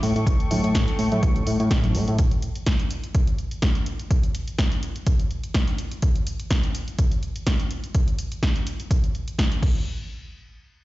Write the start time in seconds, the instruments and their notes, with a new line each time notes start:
0.02 analog synth bass A2, violin section A4 G5 C#6, open hi-hat, tambourine
0.16 analog synth bass A2, closed hi-hat, tambourine
0.27 analog synth bass A1, kick, closed hi-hat
0.40 closed hi-hat
0.50 analog synth bass A2, open hi-hat, tambourine, high conga, low conga
0.64 analog synth bass A2, closed hi-hat, tambourine
0.75 analog synth bass A1, kick, snare, closed hi-hat
0.88 closed hi-hat
0.98 analog synth bass A2, open hi-hat, tambourine
1.12 analog synth bass A2, closed hi-hat, tambourine, high conga
1.23 analog synth bass A1, kick, closed hi-hat, tambourine
1.36 closed hi-hat
1.47 analog synth bass A2, open hi-hat, tambourine
1.60 analog synth bass A2, closed hi-hat, tambourine
1.71 analog synth bass A1, kick, snare, closed hi-hat
1.84 closed hi-hat, high conga
1.94 analog synth bass A2, open hi-hat, tambourine
2.08 analog synth bass A2, closed hi-hat, tambourine
2.19 kick, closed hi-hat
2.31 closed hi-hat
2.42 closed hi-hat
2.55 closed hi-hat
2.67 kick, snare, closed hi-hat
2.80 closed hi-hat
2.91 closed hi-hat
3.04 closed hi-hat
3.15 kick, closed hi-hat
3.27 closed hi-hat
3.38 closed hi-hat
3.51 closed hi-hat
3.62 kick, snare, closed hi-hat
3.75 closed hi-hat
3.86 closed hi-hat
3.99 closed hi-hat
4.11 kick, closed hi-hat
4.23 closed hi-hat
4.35 closed hi-hat
4.48 closed hi-hat
4.59 kick, snare, closed hi-hat
4.72 closed hi-hat
4.83 closed hi-hat
4.96 closed hi-hat
5.07 kick, closed hi-hat
5.20 closed hi-hat
5.31 closed hi-hat
5.44 closed hi-hat
5.54 kick, snare, closed hi-hat
5.68 closed hi-hat
5.78 closed hi-hat
5.91 closed hi-hat
6.02 kick, closed hi-hat
6.16 closed hi-hat
6.27 closed hi-hat
6.40 closed hi-hat
6.51 kick, snare, closed hi-hat
6.64 closed hi-hat
6.75 closed hi-hat
6.88 closed hi-hat
6.99 kick, closed hi-hat
7.12 closed hi-hat
7.23 closed hi-hat
7.36 closed hi-hat
7.47 kick, snare, closed hi-hat
7.60 closed hi-hat
7.71 closed hi-hat
7.84 closed hi-hat
7.95 kick, closed hi-hat
8.08 closed hi-hat
8.19 closed hi-hat
8.32 closed hi-hat
8.43 kick, snare, closed hi-hat
8.56 closed hi-hat
8.67 closed hi-hat
8.80 closed hi-hat
8.91 kick, closed hi-hat
9.04 closed hi-hat
9.15 closed hi-hat
9.28 closed hi-hat
9.39 kick, snare, closed hi-hat
9.52 closed hi-hat
9.63 kick, crash